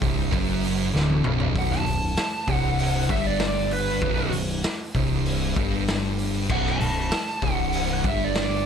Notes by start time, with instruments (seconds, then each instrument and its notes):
0.01 picked electric bass C1, distorted electric guitar C2, kick, open hi-hat
0.33 picked electric bass F#1, distorted electric guitar F#2, kick, open hi-hat
0.64 open hi-hat
0.94 picked electric bass D1, distorted electric guitar D2, snare
1.10 high tom
1.24 picked electric bass B0, distorted electric guitar B1, mid tom
1.40 floor tom
1.56 picked electric bass B0, distorted electric guitar B1, lead electric guitar F#5, kick, open hi-hat
1.72 lead electric guitar A5, snare
1.86 picked electric bass B0, distorted electric guitar B1, open hi-hat
2.17 snare, open hi-hat
2.48 picked electric bass C1, distorted electric guitar C2, kick, open hi-hat
2.53 lead electric guitar F#5
2.79 open hi-hat
2.97 lead electric guitar F#5
3.09 picked electric bass G1, distorted electric guitar G2, lead electric guitar E5, kick, open hi-hat
3.26 lead electric guitar D5
3.39 snare, open hi-hat
3.43 lead electric guitar D5
3.71 lead electric guitar B4, open hi-hat
4.01 picked electric bass B0, distorted electric guitar B1, kick, open hi-hat
4.32 picked electric bass B0, distorted electric guitar B1, open hi-hat
4.63 snare, open hi-hat
4.95 picked electric bass C1, distorted electric guitar C2, kick, open hi-hat
5.26 open hi-hat
5.56 picked electric bass G1, distorted electric guitar G2, kick, open hi-hat
5.88 snare, open hi-hat
6.18 open hi-hat
6.49 picked electric bass B0, distorted electric guitar B1, lead electric guitar F#5, kick, crash
6.66 lead electric guitar A5, snare
6.80 picked electric bass B0, distorted electric guitar B1, open hi-hat
7.11 snare, open hi-hat
7.42 picked electric bass C1, distorted electric guitar C2, kick, open hi-hat
7.55 lead electric guitar F#5
7.73 open hi-hat
7.91 lead electric guitar F#5
8.04 picked electric bass G1, distorted electric guitar G2, lead electric guitar E5, kick, open hi-hat
8.24 lead electric guitar D5
8.35 snare, open hi-hat
8.39 lead electric guitar D5